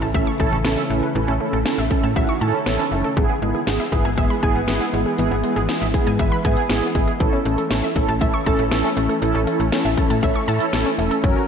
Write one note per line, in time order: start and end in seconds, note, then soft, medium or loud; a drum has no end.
0.00 0.13 A1 medium
0.00 3.13 C#3 medium
0.00 1.13 E3 medium
0.00 3.13 A3 medium
0.00 0.10 A5 medium
0.14 0.26 A1 loud
0.14 0.32 C#4 medium
0.14 0.31 E4 medium
0.14 0.31 A4 medium
0.14 0.22 E5 loud
0.14 kick medium
0.27 0.35 C#6 medium
0.40 0.51 A1 loud
0.40 0.57 C#4 loud
0.40 0.57 E4 loud
0.40 0.57 A4 loud
0.40 0.47 A5 medium
0.40 kick medium
0.52 0.64 A1 medium
0.65 0.76 A1 loud
0.65 0.73 E3 medium
0.65 0.82 C#4 loud
0.65 0.82 E4 loud
0.65 0.82 A4 loud
0.65 snare loud
0.77 0.85 C#4 medium
0.90 1.02 A1 loud
0.90 0.98 A3 medium
0.90 1.07 C#4 medium
0.90 1.07 E4 medium
0.90 1.07 B4 loud
1.03 1.10 A4 medium
1.15 1.27 A1 loud
1.15 3.15 D#3 medium
1.15 1.23 E3 medium
1.15 1.32 C#4 loud
1.15 1.32 E4 loud
1.15 1.32 A4 loud
1.28 1.39 A1 loud
1.28 1.35 C#4 medium
1.40 1.48 A3 medium
1.40 1.58 C#4 medium
1.40 1.58 E4 medium
1.40 1.58 A4 loud
1.53 1.65 A1 medium
1.53 1.61 A4 medium
1.66 1.73 C#4 medium
1.66 1.83 C#4 medium
1.66 1.83 E4 medium
1.66 1.83 A4 medium
1.66 snare loud
1.78 1.90 A1 medium
1.78 1.86 E5 medium
1.91 2.08 C#4 medium
1.91 2.08 E4 medium
1.91 1.98 A4 medium
1.91 2.08 A4 loud
1.91 kick medium
2.03 2.15 A2 medium
2.03 2.11 A5 medium
2.16 2.28 A1 loud
2.16 2.33 C#4 medium
2.16 2.33 E4 medium
2.16 2.33 F#4 loud
2.16 2.24 E5 loud
2.16 kick medium
2.29 2.36 C#6 medium
2.41 2.53 A2 medium
2.41 2.58 C#4 loud
2.41 2.58 E4 loud
2.41 2.58 A4 loud
2.41 2.49 A5 medium
2.66 2.78 A1 loud
2.66 2.74 E3 medium
2.66 2.84 C#4 loud
2.66 2.84 E4 loud
2.66 2.84 A4 loud
2.66 snare loud
2.79 2.87 C#4 medium
2.92 3.03 F#1 medium
2.92 2.99 A3 medium
2.92 3.09 C#4 medium
2.92 3.09 E4 medium
2.92 3.09 A4 loud
3.04 3.12 A4 medium
3.17 3.29 G#1 loud
3.17 3.25 E3 medium
3.17 7.16 E3 medium
3.17 7.16 G#3 medium
3.17 7.16 B3 medium
3.17 3.34 B3 loud
3.17 3.34 E4 loud
3.17 3.34 G#4 loud
3.17 kick loud
3.29 3.37 B3 medium
3.42 3.54 G#1 loud
3.42 3.50 G#3 medium
3.42 3.59 B3 medium
3.42 3.59 E4 medium
3.42 3.59 G#4 medium
3.55 3.62 G#4 medium
3.67 3.79 G#1 loud
3.67 3.84 B3 medium
3.67 3.75 B3 medium
3.67 3.84 E4 medium
3.67 3.84 G#4 loud
3.67 snare loud
3.80 3.87 E5 medium
3.92 4.04 G#1 loud
3.92 4.09 B3 medium
3.92 4.09 E4 medium
3.92 4.10 G#4 loud
3.92 4.00 G#4 medium
3.92 kick medium
4.05 4.17 G#1 medium
4.05 4.13 G#5 medium
4.17 4.29 G#1 loud
4.17 4.35 B3 medium
4.17 4.35 E4 medium
4.17 4.35 G#4 medium
4.17 4.25 E5 loud
4.17 kick medium
4.30 4.38 B5 medium
4.43 4.55 G#1 loud
4.43 4.60 B3 loud
4.43 4.60 E4 loud
4.43 4.60 G#4 loud
4.43 4.50 G#5 medium
4.43 kick medium
4.55 4.67 G#1 medium
4.68 4.80 G#1 loud
4.68 4.76 E3 medium
4.68 4.85 B3 loud
4.68 4.85 E4 loud
4.68 4.85 G#4 loud
4.68 snare loud
4.81 4.88 B3 medium
4.93 5.05 G#1 loud
4.93 5.01 G#3 medium
4.93 5.10 B3 medium
4.93 5.10 E4 medium
4.93 5.10 G#4 loud
5.06 5.14 G#4 medium
5.18 5.30 G#1 loud
5.18 5.26 E3 loud
5.18 5.36 B3 loud
5.18 5.36 E4 loud
5.18 5.36 G#4 loud
5.18 closed hi-hat medium
5.31 5.43 G#1 medium
5.31 5.39 B3 medium
5.44 5.51 G#3 medium
5.44 5.61 B3 medium
5.44 5.61 E4 medium
5.44 5.61 G#4 loud
5.44 closed hi-hat medium
5.56 5.68 G#1 loud
5.56 5.64 G#4 medium
5.56 closed hi-hat soft
5.69 5.76 B3 medium
5.69 5.86 B3 medium
5.69 5.86 E4 medium
5.69 5.86 G#4 medium
5.69 snare loud
5.69 closed hi-hat medium
5.81 5.93 G#1 loud
5.81 5.89 E5 medium
5.94 6.11 B3 medium
5.94 6.11 E4 medium
5.94 6.02 G#4 medium
5.94 6.11 G#4 loud
5.94 kick medium
5.94 closed hi-hat medium
6.07 6.19 G#2 medium
6.07 6.14 G#5 medium
6.07 closed hi-hat medium
6.19 6.31 G#1 loud
6.19 6.36 B3 medium
6.19 6.36 E4 medium
6.19 6.36 B4 loud
6.19 6.27 E5 loud
6.19 kick medium
6.19 closed hi-hat medium
6.32 6.40 B5 medium
6.45 6.56 G#2 loud
6.45 6.62 B3 loud
6.45 6.62 E4 loud
6.45 6.62 G#4 loud
6.45 6.52 G#5 medium
6.45 kick medium
6.45 closed hi-hat medium
6.57 closed hi-hat medium
6.70 6.82 G#1 loud
6.70 6.77 E3 medium
6.70 6.87 B3 loud
6.70 6.87 E4 loud
6.70 6.87 G#4 loud
6.70 snare loud
6.70 closed hi-hat medium
6.82 6.90 B3 medium
6.95 7.07 G#1 medium
6.95 7.03 G#3 medium
6.95 7.12 B3 medium
6.95 7.12 E4 medium
6.95 7.12 G#4 medium
6.95 kick medium
6.95 closed hi-hat medium
7.07 7.15 G#4 medium
7.07 closed hi-hat soft
7.20 7.32 A1 loud
7.20 7.28 E3 loud
7.20 11.20 E3 medium
7.20 11.20 A3 medium
7.20 7.37 C#4 loud
7.20 11.48 C#4 medium
7.20 7.37 E4 loud
7.20 7.37 A4 loud
7.20 kick loud
7.20 closed hi-hat medium
7.33 7.40 C#4 medium
7.45 7.57 A1 loud
7.45 7.53 A3 medium
7.45 7.63 C#4 medium
7.45 7.63 E4 medium
7.45 7.63 A4 loud
7.45 closed hi-hat medium
7.58 7.66 A4 medium
7.58 closed hi-hat soft
7.71 7.82 A1 loud
7.71 7.78 C#4 medium
7.71 7.88 C#4 medium
7.71 7.88 E4 medium
7.71 7.88 A4 loud
7.71 snare loud
7.71 closed hi-hat medium
7.83 7.91 E5 medium
7.96 8.07 A1 medium
7.96 8.13 C#4 medium
7.96 8.13 E4 medium
7.96 8.04 A4 medium
7.96 8.13 A4 loud
7.96 kick medium
7.96 closed hi-hat medium
8.08 8.20 A1 loud
8.08 8.16 A5 medium
8.08 closed hi-hat medium
8.21 8.33 A1 medium
8.21 8.38 C#4 medium
8.21 8.38 E4 medium
8.21 8.38 A4 loud
8.21 8.29 E5 loud
8.21 kick medium
8.21 closed hi-hat medium
8.34 8.41 C#6 medium
8.46 8.58 A1 loud
8.46 8.63 C#4 loud
8.46 8.63 E4 loud
8.46 8.63 A4 loud
8.46 8.54 A5 medium
8.46 kick medium
8.46 closed hi-hat medium
8.59 8.71 A1 loud
8.59 closed hi-hat medium
8.71 8.83 A1 loud
8.71 8.79 E3 medium
8.71 8.89 C#4 loud
8.71 8.89 E4 loud
8.71 8.89 A4 loud
8.71 snare loud
8.71 closed hi-hat medium
8.84 8.92 C#4 medium
8.97 9.08 A1 loud
8.97 9.04 A3 medium
8.97 9.14 C#4 medium
8.97 9.14 E4 medium
8.97 9.14 A4 medium
8.97 closed hi-hat medium
9.09 9.17 A4 medium
9.09 closed hi-hat medium
9.22 9.34 A1 loud
9.22 9.30 E3 loud
9.22 9.39 C#4 loud
9.22 9.39 E4 loud
9.22 9.39 A4 loud
9.22 closed hi-hat medium
9.35 9.46 A1 loud
9.35 9.42 C#4 medium
9.47 9.55 A3 medium
9.47 9.64 C#4 medium
9.47 9.64 E4 medium
9.47 9.64 A4 loud
9.47 closed hi-hat medium
9.60 9.71 A1 loud
9.60 9.68 A4 medium
9.60 closed hi-hat soft
9.72 9.80 C#4 medium
9.72 9.89 C#4 medium
9.72 9.90 E4 medium
9.72 9.90 A4 loud
9.72 snare loud
9.72 closed hi-hat medium
9.85 9.97 A1 loud
9.85 9.93 E5 medium
9.97 10.15 C#4 medium
9.97 10.15 E4 medium
9.97 10.05 A4 medium
9.97 10.15 A4 loud
9.97 kick medium
9.97 closed hi-hat medium
10.10 10.22 A2 medium
10.10 10.18 A5 medium
10.10 closed hi-hat medium
10.23 10.35 A1 loud
10.23 10.40 C#4 medium
10.23 10.40 E4 medium
10.23 10.40 A4 medium
10.23 10.30 E5 loud
10.23 kick medium
10.23 closed hi-hat medium
10.35 10.43 C#6 medium
10.48 10.60 A2 medium
10.48 10.65 C#4 loud
10.48 10.65 E4 loud
10.48 10.65 A4 loud
10.48 10.56 A5 medium
10.48 closed hi-hat medium
10.60 closed hi-hat medium
10.73 10.85 A1 loud
10.73 10.81 E3 medium
10.73 10.90 C#4 loud
10.73 10.90 E4 loud
10.73 10.90 A4 loud
10.73 snare loud
10.73 closed hi-hat medium
10.86 10.93 C#4 medium
10.98 11.10 E1 loud
10.98 11.06 A3 medium
10.98 11.15 C#4 medium
10.98 11.15 E4 medium
10.98 11.15 A4 loud
10.98 closed hi-hat medium
11.11 11.19 A4 medium
11.11 closed hi-hat medium
11.24 11.35 F#1 loud
11.24 11.31 F#3 loud
11.24 11.48 F#3 medium
11.24 11.48 A#3 medium
11.24 11.41 C#4 loud
11.24 11.41 F#4 loud
11.24 11.41 A#4 loud
11.24 kick loud
11.24 closed hi-hat medium
11.36 11.44 C#4 medium